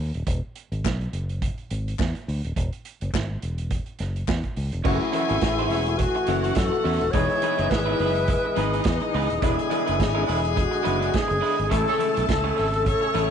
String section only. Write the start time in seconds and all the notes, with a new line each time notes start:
4.85 G#4 G#5
6.28 F#4 F#5
7.14 E4 E5
8.56 D#4 D#5
9.42 G#4 G#5
11.71 A4 A5
12.87 C#5 C#6